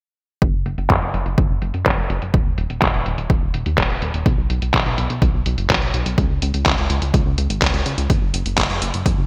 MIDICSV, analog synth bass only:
0, 0, Header, 1, 2, 480
1, 0, Start_track
1, 0, Tempo, 480000
1, 419, Time_signature, 4, 2, 24, 8
1, 9266, End_track
2, 0, Start_track
2, 0, Title_t, "Analog synth bass"
2, 0, Program_c, 0, 38
2, 419, Note_on_c, 0, 30, 99
2, 520, Note_off_c, 0, 30, 0
2, 539, Note_on_c, 0, 30, 68
2, 640, Note_off_c, 0, 30, 0
2, 659, Note_on_c, 0, 30, 88
2, 760, Note_off_c, 0, 30, 0
2, 779, Note_on_c, 0, 30, 80
2, 880, Note_off_c, 0, 30, 0
2, 898, Note_on_c, 0, 30, 101
2, 1000, Note_off_c, 0, 30, 0
2, 1020, Note_on_c, 0, 30, 75
2, 1120, Note_off_c, 0, 30, 0
2, 1139, Note_on_c, 0, 30, 89
2, 1240, Note_off_c, 0, 30, 0
2, 1260, Note_on_c, 0, 30, 76
2, 1360, Note_off_c, 0, 30, 0
2, 1379, Note_on_c, 0, 30, 106
2, 1480, Note_off_c, 0, 30, 0
2, 1500, Note_on_c, 0, 30, 80
2, 1601, Note_off_c, 0, 30, 0
2, 1620, Note_on_c, 0, 30, 94
2, 1721, Note_off_c, 0, 30, 0
2, 1740, Note_on_c, 0, 42, 87
2, 1840, Note_off_c, 0, 42, 0
2, 1859, Note_on_c, 0, 30, 91
2, 1960, Note_off_c, 0, 30, 0
2, 1980, Note_on_c, 0, 30, 74
2, 2081, Note_off_c, 0, 30, 0
2, 2101, Note_on_c, 0, 30, 94
2, 2201, Note_off_c, 0, 30, 0
2, 2221, Note_on_c, 0, 30, 84
2, 2321, Note_off_c, 0, 30, 0
2, 2339, Note_on_c, 0, 27, 99
2, 2440, Note_off_c, 0, 27, 0
2, 2461, Note_on_c, 0, 27, 73
2, 2561, Note_off_c, 0, 27, 0
2, 2581, Note_on_c, 0, 27, 88
2, 2681, Note_off_c, 0, 27, 0
2, 2700, Note_on_c, 0, 27, 81
2, 2800, Note_off_c, 0, 27, 0
2, 2819, Note_on_c, 0, 27, 100
2, 2920, Note_off_c, 0, 27, 0
2, 2940, Note_on_c, 0, 27, 76
2, 3040, Note_off_c, 0, 27, 0
2, 3059, Note_on_c, 0, 27, 93
2, 3160, Note_off_c, 0, 27, 0
2, 3178, Note_on_c, 0, 27, 83
2, 3280, Note_off_c, 0, 27, 0
2, 3298, Note_on_c, 0, 27, 101
2, 3400, Note_off_c, 0, 27, 0
2, 3419, Note_on_c, 0, 27, 75
2, 3520, Note_off_c, 0, 27, 0
2, 3540, Note_on_c, 0, 27, 93
2, 3640, Note_off_c, 0, 27, 0
2, 3661, Note_on_c, 0, 39, 88
2, 3761, Note_off_c, 0, 39, 0
2, 3779, Note_on_c, 0, 27, 102
2, 3880, Note_off_c, 0, 27, 0
2, 3899, Note_on_c, 0, 27, 78
2, 4000, Note_off_c, 0, 27, 0
2, 4019, Note_on_c, 0, 27, 92
2, 4120, Note_off_c, 0, 27, 0
2, 4138, Note_on_c, 0, 27, 82
2, 4240, Note_off_c, 0, 27, 0
2, 4259, Note_on_c, 0, 35, 95
2, 4360, Note_off_c, 0, 35, 0
2, 4379, Note_on_c, 0, 35, 71
2, 4480, Note_off_c, 0, 35, 0
2, 4500, Note_on_c, 0, 35, 89
2, 4600, Note_off_c, 0, 35, 0
2, 4620, Note_on_c, 0, 35, 78
2, 4720, Note_off_c, 0, 35, 0
2, 4739, Note_on_c, 0, 35, 103
2, 4840, Note_off_c, 0, 35, 0
2, 4860, Note_on_c, 0, 35, 75
2, 4960, Note_off_c, 0, 35, 0
2, 4980, Note_on_c, 0, 35, 89
2, 5080, Note_off_c, 0, 35, 0
2, 5100, Note_on_c, 0, 35, 79
2, 5200, Note_off_c, 0, 35, 0
2, 5219, Note_on_c, 0, 35, 97
2, 5320, Note_off_c, 0, 35, 0
2, 5341, Note_on_c, 0, 35, 76
2, 5441, Note_off_c, 0, 35, 0
2, 5461, Note_on_c, 0, 35, 90
2, 5561, Note_off_c, 0, 35, 0
2, 5580, Note_on_c, 0, 30, 80
2, 5681, Note_off_c, 0, 30, 0
2, 5699, Note_on_c, 0, 35, 98
2, 5800, Note_off_c, 0, 35, 0
2, 5819, Note_on_c, 0, 35, 72
2, 5920, Note_off_c, 0, 35, 0
2, 5941, Note_on_c, 0, 35, 94
2, 6041, Note_off_c, 0, 35, 0
2, 6060, Note_on_c, 0, 35, 80
2, 6161, Note_off_c, 0, 35, 0
2, 6179, Note_on_c, 0, 37, 98
2, 6280, Note_off_c, 0, 37, 0
2, 6301, Note_on_c, 0, 37, 70
2, 6401, Note_off_c, 0, 37, 0
2, 6420, Note_on_c, 0, 37, 93
2, 6520, Note_off_c, 0, 37, 0
2, 6541, Note_on_c, 0, 37, 80
2, 6641, Note_off_c, 0, 37, 0
2, 6658, Note_on_c, 0, 37, 101
2, 6760, Note_off_c, 0, 37, 0
2, 6780, Note_on_c, 0, 37, 74
2, 6881, Note_off_c, 0, 37, 0
2, 6900, Note_on_c, 0, 37, 92
2, 7000, Note_off_c, 0, 37, 0
2, 7020, Note_on_c, 0, 37, 83
2, 7121, Note_off_c, 0, 37, 0
2, 7139, Note_on_c, 0, 37, 99
2, 7240, Note_off_c, 0, 37, 0
2, 7260, Note_on_c, 0, 37, 76
2, 7360, Note_off_c, 0, 37, 0
2, 7379, Note_on_c, 0, 37, 93
2, 7480, Note_off_c, 0, 37, 0
2, 7498, Note_on_c, 0, 32, 85
2, 7600, Note_off_c, 0, 32, 0
2, 7618, Note_on_c, 0, 37, 101
2, 7720, Note_off_c, 0, 37, 0
2, 7738, Note_on_c, 0, 37, 74
2, 7840, Note_off_c, 0, 37, 0
2, 7858, Note_on_c, 0, 37, 92
2, 7960, Note_off_c, 0, 37, 0
2, 7978, Note_on_c, 0, 37, 84
2, 8080, Note_off_c, 0, 37, 0
2, 8098, Note_on_c, 0, 30, 97
2, 8199, Note_off_c, 0, 30, 0
2, 8219, Note_on_c, 0, 30, 71
2, 8320, Note_off_c, 0, 30, 0
2, 8338, Note_on_c, 0, 30, 91
2, 8439, Note_off_c, 0, 30, 0
2, 8459, Note_on_c, 0, 30, 80
2, 8560, Note_off_c, 0, 30, 0
2, 8577, Note_on_c, 0, 30, 100
2, 8679, Note_off_c, 0, 30, 0
2, 8698, Note_on_c, 0, 30, 74
2, 8800, Note_off_c, 0, 30, 0
2, 8819, Note_on_c, 0, 30, 94
2, 8920, Note_off_c, 0, 30, 0
2, 8938, Note_on_c, 0, 30, 79
2, 9040, Note_off_c, 0, 30, 0
2, 9057, Note_on_c, 0, 30, 101
2, 9159, Note_off_c, 0, 30, 0
2, 9178, Note_on_c, 0, 30, 79
2, 9266, Note_off_c, 0, 30, 0
2, 9266, End_track
0, 0, End_of_file